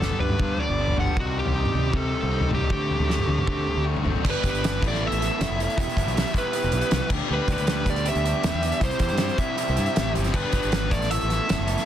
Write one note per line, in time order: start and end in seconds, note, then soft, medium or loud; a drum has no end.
0.00 0.11 G1 medium
0.00 0.40 G2 medium
0.00 0.38 D3 medium
0.00 0.21 G3 medium
0.00 0.37 B3 medium
0.00 0.20 B3 loud
0.00 0.19 D4 medium
0.00 0.19 D4 loud
0.00 2.68 G4 medium
0.00 0.18 A4 medium
0.00 1.15 F#5 medium
0.00 1.15 B5 medium
0.00 4.21 D6 medium
0.00 snare medium
0.10 mid tom medium
0.19 0.39 G2 medium
0.19 0.40 G3 medium
0.19 0.40 B3 medium
0.19 0.41 D4 medium
0.19 0.61 B4 medium
0.19 floor tom medium
0.29 mid tom medium
0.39 0.58 G2 medium
0.39 0.77 D3 medium
0.39 0.78 G3 medium
0.39 0.78 B3 medium
0.39 0.80 D4 medium
0.39 kick medium
0.39 floor tom medium
0.58 0.98 G3 medium
0.58 0.96 D5 medium
0.58 floor tom medium
0.69 0.95 G1 medium
0.78 1.15 D3 medium
0.78 0.98 G3 medium
0.78 0.97 B3 medium
0.78 0.96 D4 medium
0.87 floor tom medium
0.97 1.07 G1 medium
0.97 1.16 G3 medium
0.97 1.16 B3 medium
0.97 1.18 D4 medium
0.97 1.17 F#5 medium
0.97 floor tom medium
1.07 floor tom medium
1.16 1.43 C2 medium
1.16 1.52 C3 medium
1.16 1.53 G3 medium
1.16 1.54 C4 loud
1.16 1.54 D#4 medium
1.16 2.69 D#5 medium
1.16 2.69 C6 medium
1.16 kick medium
1.16 floor tom medium
1.20 1.39 F#4 medium
1.37 1.94 G3 medium
1.37 1.96 G4 medium
1.45 1.63 C2 medium
1.45 floor tom medium
1.54 1.89 C3 medium
1.54 2.13 D#3 medium
1.54 1.74 G3 medium
1.54 1.72 C4 medium
1.54 1.71 D#4 loud
1.65 mid tom medium
1.72 1.92 C3 medium
1.72 1.90 G3 medium
1.72 1.90 C4 medium
1.72 1.91 D#4 medium
1.72 floor tom medium
1.90 2.28 C3 medium
1.90 2.11 C3 medium
1.90 2.30 G3 medium
1.90 2.29 C4 medium
1.90 2.30 D#4 medium
1.90 kick loud
1.90 floor tom medium
1.96 2.49 A4 medium
2.14 2.51 D#3 medium
2.23 2.49 C2 medium
2.29 2.66 C3 medium
2.29 2.49 G3 medium
2.29 2.47 C4 medium
2.29 2.47 D#4 medium
2.41 floor tom medium
2.48 2.67 G3 soft
2.48 2.67 C4 medium
2.48 2.68 D#4 medium
2.48 floor tom medium
2.48 mid tom medium
2.53 2.61 C2 medium
2.53 2.71 D#3 medium
2.53 3.84 G4 medium
2.60 floor tom medium
2.66 3.05 D3 medium
2.66 3.06 A3 medium
2.66 3.06 C4 medium
2.66 3.07 F#4 medium
2.66 kick medium
2.66 floor tom medium
2.71 2.97 D2 medium
2.71 3.09 D3 medium
2.90 3.46 A3 medium
2.90 floor tom medium
3.00 3.17 D2 medium
3.00 floor tom medium
3.06 3.44 D3 medium
3.06 3.26 A3 medium
3.06 3.25 C4 loud
3.06 3.24 F#4 medium
3.06 snare medium
3.19 mid tom medium
3.25 3.45 D3 medium
3.25 3.44 A3 medium
3.25 3.45 C4 medium
3.25 3.46 F#4 medium
3.25 floor tom medium
3.38 mid tom medium
3.45 3.81 D3 medium
3.45 3.65 D3 medium
3.45 3.83 A3 medium
3.45 3.83 C4 medium
3.45 3.83 F#4 medium
3.45 kick loud
3.45 floor tom medium
3.65 4.02 D3 medium
3.65 floor tom medium
3.76 4.06 D2 medium
3.82 4.22 D3 medium
3.82 4.04 A3 medium
3.82 4.02 C4 medium
3.82 4.01 F#4 medium
3.96 floor tom medium
4.02 4.14 G#1 medium
4.02 4.22 D3 medium
4.02 4.22 A3 soft
4.02 4.22 C4 medium
4.02 4.22 F#4 medium
4.02 floor tom medium
4.16 floor tom medium
4.22 4.34 G1 loud
4.22 4.41 G2 medium
4.22 4.42 D3 medium
4.22 4.40 G3 medium
4.22 4.44 B3 loud
4.22 4.42 D4 loud
4.22 4.42 G4 loud
4.22 4.82 G4 medium
4.22 4.43 B4 medium
4.22 7.08 E5 medium
4.22 kick loud
4.22 crash loud
4.30 4.47 B4 medium
4.42 4.52 G1 loud
4.42 4.62 G2 medium
4.42 4.62 D3 medium
4.42 4.60 G3 medium
4.42 4.64 B3 medium
4.42 4.61 D4 medium
4.42 4.61 G4 medium
4.42 4.62 B4 medium
4.42 kick medium
4.42 closed hi-hat medium
4.50 4.79 G1 medium
4.50 4.83 B4 medium
4.55 closed hi-hat soft
4.62 4.81 G2 medium
4.62 4.81 D3 medium
4.62 4.80 G3 medium
4.62 4.83 B3 medium
4.62 4.80 D4 medium
4.62 4.80 G4 medium
4.62 4.80 B4 loud
4.62 snare loud
4.62 closed hi-hat loud
4.80 5.08 A1 medium
4.80 5.00 A2 loud
4.80 5.02 E3 loud
4.80 4.99 A3 medium
4.80 5.00 B3 loud
4.80 5.01 E4 loud
4.80 5.77 A4 medium
4.80 5.01 B4 loud
4.80 11.85 E6 medium
4.80 kick loud
4.84 5.02 B3 loud
4.84 5.01 A4 loud
4.84 5.06 D5 medium
4.84 crash medium
4.94 snare soft
5.00 5.18 A2 medium
5.00 5.19 E3 medium
5.00 5.18 A3 medium
5.00 5.19 B3 medium
5.00 5.20 E4 medium
5.00 5.20 A4 medium
5.00 5.20 B4 medium
5.06 5.79 E5 loud
5.11 5.28 A1 medium
5.11 closed hi-hat soft
5.19 5.37 A2 medium
5.19 5.38 E3 medium
5.19 5.36 A3 medium
5.19 5.38 B3 medium
5.19 5.38 E4 medium
5.19 5.39 A4 medium
5.19 5.38 B4 medium
5.19 closed hi-hat medium
5.23 snare soft
5.37 5.49 F#1 loud
5.37 5.57 A2 medium
5.37 5.58 E3 medium
5.37 5.55 A3 medium
5.37 5.57 B3 loud
5.37 5.57 E4 medium
5.37 5.58 A4 loud
5.37 5.58 B4 loud
5.37 closed hi-hat medium
5.42 snare loud
5.50 5.66 F1 medium
5.56 5.76 A2 medium
5.56 5.77 E3 medium
5.56 5.75 A3 medium
5.56 5.77 B3 medium
5.56 5.77 E4 medium
5.56 5.77 A4 medium
5.56 5.77 B4 medium
5.56 closed hi-hat medium
5.70 closed hi-hat soft
5.76 5.86 E1 loud
5.76 5.96 E2 medium
5.76 5.96 B2 medium
5.76 5.95 E3 medium
5.76 5.95 G3 loud
5.76 5.95 B3 loud
5.76 5.96 E4 loud
5.76 10.88 G4 medium
5.76 5.97 G4 loud
5.76 5.96 B4 loud
5.76 7.08 B5 medium
5.76 kick loud
5.76 closed hi-hat medium
5.80 6.32 E5 loud
5.89 closed hi-hat soft
5.95 6.05 G1 medium
5.95 6.13 E2 medium
5.95 6.14 B2 medium
5.95 6.13 E3 medium
5.95 6.13 G3 medium
5.95 6.14 B3 medium
5.95 6.14 E4 medium
5.95 6.16 G4 medium
5.95 6.14 B4 medium
5.95 kick medium
5.95 closed hi-hat medium
6.06 6.23 B1 medium
6.06 closed hi-hat soft
6.13 6.33 E2 medium
6.13 6.34 B2 medium
6.13 6.32 E3 medium
6.13 6.32 G3 medium
6.13 6.33 B3 medium
6.13 6.33 E4 medium
6.13 6.36 G4 medium
6.13 6.34 B4 loud
6.17 snare loud
6.17 closed hi-hat medium
6.27 closed hi-hat soft
6.33 6.52 E2 loud
6.33 6.53 B2 medium
6.33 6.52 E3 loud
6.33 6.53 G3 loud
6.33 6.53 B3 loud
6.33 6.53 E4 loud
6.33 6.53 B4 loud
6.33 kick medium
6.33 closed hi-hat medium
6.37 6.55 G4 loud
6.37 7.09 B4 loud
6.53 6.71 E2 medium
6.53 6.71 B2 medium
6.53 6.71 E3 medium
6.53 6.70 G3 medium
6.53 6.71 B3 medium
6.53 6.71 E4 medium
6.53 6.73 G4 medium
6.53 6.70 B4 medium
6.53 closed hi-hat medium
6.62 6.72 E1 medium
6.62 closed hi-hat soft
6.70 6.81 B1 medium
6.70 6.89 E2 medium
6.70 6.90 B2 medium
6.70 6.88 E3 medium
6.70 6.88 G3 medium
6.70 6.88 B3 medium
6.70 6.90 E4 medium
6.70 6.91 G4 medium
6.70 6.89 B4 medium
6.70 closed hi-hat medium
6.81 closed hi-hat soft
6.89 7.00 C2 loud
6.89 7.09 E2 medium
6.89 7.10 B2 loud
6.89 7.09 E3 medium
6.89 7.10 G3 medium
6.89 7.09 B3 medium
6.89 7.11 E4 medium
6.89 7.11 G4 medium
6.89 7.09 B4 loud
6.89 snare loud
6.89 closed hi-hat medium
7.09 7.19 D2 medium
7.09 7.28 D3 medium
7.09 7.29 G3 medium
7.09 7.30 B3 loud
7.09 7.28 D4 medium
7.09 7.29 G4 medium
7.09 7.29 B4 medium
7.09 8.80 D5 medium
7.09 8.80 B5 medium
7.09 kick loud
7.09 crash medium
7.29 7.39 D2 loud
7.29 7.46 D3 medium
7.29 7.47 G3 loud
7.29 7.47 B3 medium
7.29 7.47 D4 loud
7.29 7.48 G4 loud
7.29 7.48 B4 loud
7.33 7.50 B4 medium
7.47 7.57 D2 loud
7.47 7.66 D3 medium
7.47 7.67 G3 medium
7.47 7.67 B3 medium
7.47 7.66 D4 medium
7.47 7.68 G4 medium
7.47 7.67 B4 loud
7.47 kick medium
7.47 closed hi-hat medium
7.53 7.87 B4 medium
7.58 8.10 D2 medium
7.58 closed hi-hat soft
7.67 7.84 D3 medium
7.67 7.85 G3 loud
7.67 7.86 B3 medium
7.67 7.85 D4 loud
7.67 7.87 G4 medium
7.67 7.85 B4 loud
7.67 snare loud
7.67 closed hi-hat medium
7.85 8.03 D3 loud
7.85 8.04 G3 loud
7.85 8.04 B3 loud
7.85 8.04 D4 loud
7.85 8.06 G4 loud
7.85 8.05 B4 loud
7.85 kick medium
7.85 closed hi-hat medium
7.90 8.08 D5 medium
7.96 closed hi-hat soft
8.04 8.22 D3 medium
8.04 8.24 G3 medium
8.04 8.24 B3 medium
8.04 8.23 D4 medium
8.04 8.24 G4 medium
8.04 8.24 B4 medium
8.04 closed hi-hat loud
8.09 8.86 E5 loud
8.15 8.33 D2 medium
8.15 closed hi-hat soft
8.23 8.41 D3 medium
8.23 8.43 G3 medium
8.23 8.43 B3 medium
8.23 8.42 D4 medium
8.23 8.44 G4 medium
8.23 8.43 B4 loud
8.23 closed hi-hat medium
8.42 8.53 E2 loud
8.42 8.59 D3 medium
8.42 8.60 G3 medium
8.42 8.60 B3 medium
8.42 8.60 D4 medium
8.42 8.60 G4 loud
8.42 8.60 B4 loud
8.42 snare loud
8.42 closed hi-hat medium
8.54 8.71 E2 medium
8.60 8.79 D3 medium
8.60 8.79 G3 medium
8.60 8.80 B3 medium
8.60 8.80 D4 medium
8.60 8.80 G4 medium
8.60 8.80 B4 medium
8.60 closed hi-hat medium
8.72 closed hi-hat soft
8.79 8.90 C2 medium
8.79 8.97 C3 loud
8.79 9.00 E3 medium
8.79 8.97 G3 medium
8.79 8.98 C4 loud
8.79 8.99 E4 loud
8.79 8.98 G4 loud
8.79 10.33 A5 medium
8.79 kick loud
8.79 closed hi-hat medium
8.83 9.36 C5 medium
8.91 closed hi-hat soft
8.98 9.09 E2 medium
8.98 9.18 C3 medium
8.98 9.18 E3 medium
8.98 9.17 G3 medium
8.98 9.18 C4 medium
8.98 9.19 E4 medium
8.98 9.19 G4 medium
8.98 kick medium
8.98 closed hi-hat medium
9.08 9.29 G2 medium
9.08 closed hi-hat soft
9.17 9.36 C3 medium
9.17 9.37 E3 medium
9.17 9.37 G3 medium
9.17 9.37 C4 medium
9.17 9.38 E4 loud
9.17 9.37 G4 loud
9.17 snare loud
9.17 closed hi-hat medium
9.29 closed hi-hat soft
9.37 9.54 C3 medium
9.37 9.56 E3 loud
9.37 9.55 G3 loud
9.37 9.55 C4 loud
9.37 9.56 E4 loud
9.37 9.56 G4 loud
9.37 10.11 E5 loud
9.37 kick medium
9.37 closed hi-hat medium
9.56 9.75 C3 medium
9.56 9.76 E3 medium
9.56 9.75 G3 medium
9.56 9.76 C4 medium
9.56 9.77 E4 medium
9.56 9.77 G4 loud
9.56 closed hi-hat medium
9.68 9.77 C2 medium
9.68 closed hi-hat soft
9.76 9.87 G2 medium
9.76 9.94 C3 medium
9.76 9.96 E3 medium
9.76 9.94 G3 medium
9.76 9.95 C4 medium
9.76 9.96 E4 medium
9.76 9.95 G4 medium
9.76 closed hi-hat medium
9.86 closed hi-hat soft
9.95 10.14 A1 medium
9.95 10.13 C3 medium
9.95 10.13 E3 medium
9.95 10.14 G3 medium
9.95 10.13 C4 medium
9.95 10.15 E4 loud
9.95 10.14 G4 loud
9.95 snare loud
9.95 closed hi-hat medium
10.14 10.34 G1 medium
10.14 10.33 C3 medium
10.14 10.34 E3 medium
10.14 10.30 G3 medium
10.14 10.32 C4 medium
10.14 10.32 E4 medium
10.14 10.31 G4 medium
10.14 closed hi-hat medium
10.24 snare soft
10.24 closed hi-hat soft
10.32 10.43 G1 loud
10.32 10.51 G2 medium
10.32 10.52 D3 medium
10.32 10.49 G3 medium
10.32 10.50 B3 loud
10.32 10.50 D4 loud
10.32 10.51 G4 loud
10.32 10.51 B4 medium
10.32 10.90 D5 medium
10.32 kick loud
10.32 crash medium
10.50 10.62 G1 loud
10.50 10.70 G2 medium
10.50 10.71 D3 medium
10.50 10.70 G3 medium
10.50 10.71 B3 medium
10.50 10.70 D4 medium
10.50 10.70 G4 medium
10.50 10.93 B4 medium
10.50 kick medium
10.50 closed hi-hat medium
10.63 10.90 G#1 medium
10.63 closed hi-hat soft
10.71 10.90 G2 medium
10.71 10.91 D3 medium
10.71 10.89 G3 medium
10.71 10.90 B3 medium
10.71 10.90 D4 medium
10.71 10.90 G4 loud
10.71 snare loud
10.71 closed hi-hat loud
10.89 11.18 A1 loud
10.89 11.09 A2 loud
10.89 11.10 E3 loud
10.89 11.07 A3 medium
10.89 11.09 B3 loud
10.89 11.09 E4 medium
10.89 11.85 A4 medium
10.89 11.08 A4 loud
10.89 11.10 D5 medium
10.89 11.85 E5 medium
10.89 kick loud
10.89 closed hi-hat medium
11.02 snare soft
11.02 closed hi-hat soft
11.08 11.28 A2 medium
11.08 11.29 E3 medium
11.08 11.27 A3 medium
11.08 11.28 B3 medium
11.08 11.28 E4 medium
11.08 11.27 A4 medium
11.08 11.85 E5 medium
11.08 closed hi-hat loud
11.21 11.39 A1 medium
11.21 closed hi-hat soft
11.28 11.47 A2 medium
11.28 11.49 E3 medium
11.28 11.46 A3 medium
11.28 11.47 B3 medium
11.28 11.48 E4 medium
11.28 11.47 A4 medium
11.28 snare soft
11.28 closed hi-hat medium
11.47 11.58 F#1 medium
11.47 11.64 A2 medium
11.47 11.66 E3 medium
11.47 11.65 A3 medium
11.47 11.67 B3 medium
11.47 11.67 E4 loud
11.47 11.66 A4 medium
11.47 snare loud
11.47 closed hi-hat loud
11.59 11.76 F#1 medium
11.65 11.85 A2 medium
11.65 11.85 E3 medium
11.65 11.85 A3 medium
11.65 11.85 B3 medium
11.65 11.85 E4 medium
11.65 11.85 A4 medium
11.65 closed hi-hat medium
11.78 snare soft
11.78 closed hi-hat soft